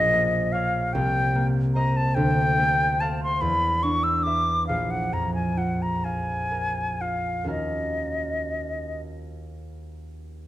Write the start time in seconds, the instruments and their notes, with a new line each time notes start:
Already playing: harp A#1, flute D#5
0.13 harp A#3
0.52 harp C#5 F5, flute F5
0.93 harp C2, flute G5
1.35 harp A#3
1.75 harp C5 D#5, flute A#5
1.97 flute A5
2.15 harp D2, flute G5
2.59 harp A3
3.01 harp C5 F5, flute A5
3.23 flute C6
3.41 harp E2, flute B5
3.83 harp D4, flute C#6
4.03 flute E6
4.23 harp B4 E5, flute D6
4.67 harp A#1, flute F5
4.91 flute F#5
5.13 harp F2, flute A#5
5.35 flute G#5
5.57 harp F4, flute F#5
5.82 flute A#5
6.04 harp F5, flute G#5
6.52 harp A#4
7.01 harp F4, flute F5
7.44 harp D#2 C#4 F#4 A#4
7.49 flute D#5, harp F5